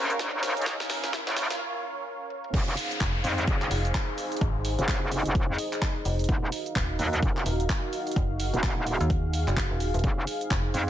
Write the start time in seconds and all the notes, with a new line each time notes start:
Already playing: A#1 C#4 A#4 C5 F5, riser
0.10 closed hi-hat, shaker
0.19 kick, snare, closed hi-hat, shaker
0.33 A#1
0.43 snare, open hi-hat, shaker
0.57 C#2, closed hi-hat, shaker
0.62 closed hi-hat
0.66 C#5, kick, snare, closed hi-hat, shaker
0.80 snare
0.90 snare, open hi-hat, shaker
1.04 snare, closed hi-hat, shaker
1.13 kick, snare, closed hi-hat, shaker
1.27 A#1, snare
1.36 snare, open hi-hat, shaker
1.50 snare, closed hi-hat, shaker
2.30 high tom
2.44 mid tom
2.54 F1 D#4 G#4 C5 F5, kick, closed hi-hat, crash, downlifter, shaker
2.77 open hi-hat, shaker
2.91 closed hi-hat, shaker
3.01 F1, kick, clap, closed hi-hat, shaker
3.24 F2, open hi-hat, shaker
3.38 closed hi-hat, shaker
3.47 F#1, kick, closed hi-hat, shaker
3.62 clap
3.71 F1, open hi-hat, shaker
3.85 closed hi-hat, shaker
3.94 kick, clap, closed hi-hat, shaker
4.18 open hi-hat, shaker
4.32 closed hi-hat, shaker
4.37 closed hi-hat
4.41 G#1 D#5, kick, closed hi-hat, shaker
4.65 open hi-hat, shaker
4.79 F1, closed hi-hat, shaker
4.88 kick, clap, closed hi-hat, shaker
5.12 open hi-hat, shaker
5.25 F1, closed hi-hat, shaker
5.35 kick, closed hi-hat, shaker
5.49 F2
5.58 open hi-hat, shaker
5.72 clap, closed hi-hat, shaker
5.82 kick, clap, closed hi-hat, shaker
6.05 F1, open hi-hat, shaker
6.19 closed hi-hat, shaker
6.24 closed hi-hat
6.29 D#1 F#4 A#4 F5, kick, closed hi-hat, shaker
6.52 open hi-hat, shaker
6.66 closed hi-hat, shaker
6.76 D#1, kick, clap, closed hi-hat, shaker
6.99 D#2, open hi-hat, shaker
7.13 closed hi-hat, shaker
7.22 F1, kick, closed hi-hat, shaker
7.37 clap
7.46 D#1, open hi-hat, shaker
7.60 closed hi-hat, shaker
7.69 kick, clap, closed hi-hat, shaker
7.93 open hi-hat, shaker
8.07 closed hi-hat, shaker
8.11 closed hi-hat
8.16 F#1 G#4, kick, shaker
8.40 open hi-hat, shaker
8.54 D#1, closed hi-hat, shaker
8.63 kick, clap, closed hi-hat, shaker
8.87 open hi-hat, shaker
9.01 D#2, closed hi-hat, shaker
9.10 kick, closed hi-hat, shaker
9.33 open hi-hat, shaker
9.47 F#1, clap, closed hi-hat, shaker
9.57 kick, clap, closed hi-hat, shaker
9.71 D#1
9.80 open hi-hat, shaker
9.94 D#1, closed hi-hat, shaker
9.99 closed hi-hat
10.04 F1 D#4 C5, kick, closed hi-hat, shaker
10.27 open hi-hat, shaker
10.41 closed hi-hat, shaker
10.51 F1, kick, clap, closed hi-hat, shaker
10.74 F2, open hi-hat, shaker